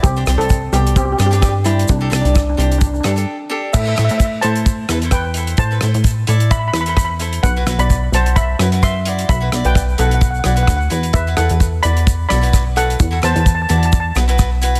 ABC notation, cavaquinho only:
X:1
M:4/4
L:1/16
Q:"Swing 16ths" 1/4=130
K:Ador
V:1 name="Cavaquinho"
z [DGc] [DGc]2 z2 [DGc]2 z2 [DGc] [DGB]2 z [DGc]2 | z [DGA] [DGd]2 z2 [DGc]2 z2 [DGA] [DGA]2 z [DGA]2 | z [EAc] [EAc]2 z2 [EAc]2 z2 [EAB] [EAc]2 z [EAc]2 | z [EAB] [EAc]2 z2 [EAd]2 z2 [EAB] [EAc]2 z [EAc]2 |
z [EFB] [EFB]2 z2 [EFA]2 z2 [EFB] [EFB]2 z [EFd]2 | z [EFB] [EFd]2 z2 [EFB]2 z2 [EFd] [EFB]2 z [EFB]2 | z [EFB] [EFB]2 z2 [EFB]2 z2 [EFA] [EFB]2 z [EFB]2 | z [EFA] [EFB]2 z2 [EFd]2 z2 [EFB] [EFB]2 z [EFB]2 |]